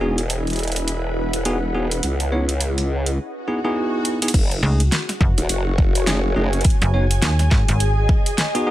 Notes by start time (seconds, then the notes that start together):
Already playing: E1 E4 G#4 B4 D#5 G#5
0.01 B3 D#4 F#4 G#4
0.18 closed hi-hat
0.30 closed hi-hat
0.47 closed hi-hat
0.50 closed hi-hat
0.53 closed hi-hat
0.56 closed hi-hat
0.59 closed hi-hat
0.63 closed hi-hat
0.68 closed hi-hat
0.72 closed hi-hat
0.76 F#5, closed hi-hat
0.88 closed hi-hat
1.33 closed hi-hat
1.45 B3 D#4 F#4 G#4, closed hi-hat
1.75 B3 D#4 F#4 G#4
1.91 closed hi-hat
2.03 C#2 C#4, closed hi-hat
2.20 closed hi-hat
2.32 B3 D#4 E4 C#5
2.49 closed hi-hat
2.61 closed hi-hat
2.78 closed hi-hat
3.06 closed hi-hat
3.18 swell
3.47 B3 D#4 E4 G#4
3.65 B3 D#4 E4 G#4
4.05 closed hi-hat
4.22 B3 D#4 E4 G#4, closed hi-hat
4.28 closed hi-hat
4.34 F#1 F#4, kick, closed hi-hat, crash
4.51 closed hi-hat
4.63 C#2 A3 C#4 D#4 G#4
4.80 closed hi-hat
4.92 C#5, snare, closed hi-hat
5.09 snare, closed hi-hat
5.21 F#1, kick
5.38 D#1 G#5, closed hi-hat
5.49 F#1, closed hi-hat
5.78 kick
5.95 closed hi-hat
6.07 A3 C#4 D#4 G#4, snare, closed hi-hat
6.36 F#1 A3 C#4 D#4 G#4
6.53 closed hi-hat
6.61 closed hi-hat
6.65 G#4, kick, closed hi-hat
6.70 closed hi-hat
6.82 F#1, closed hi-hat
6.94 B3 D#4 F#4 C#5
7.11 closed hi-hat
7.22 D#2, snare, closed hi-hat
7.38 D#5, snare, closed hi-hat
7.51 G#1, kick, snare
7.68 G#1, closed hi-hat
7.80 closed hi-hat
8.09 kick
8.26 closed hi-hat
8.38 snare, closed hi-hat
8.55 B3 D#4 F#4 G#4, closed hi-hat
8.67 B3 D#4 F#4 G#4